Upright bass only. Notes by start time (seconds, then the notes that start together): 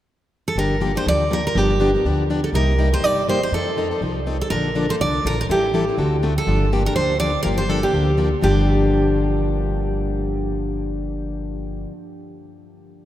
0.56 G1
1.06 D2
1.55 G1
2.04 D2
2.52 C2
3.02 G1
3.51 F2
4.01 C2
4.50 A#1
5.00 C2
5.25 A#1
5.49 A1
5.98 D2
6.47 G1
6.95 D2
7.45 G1
7.93 D2
8.42 G1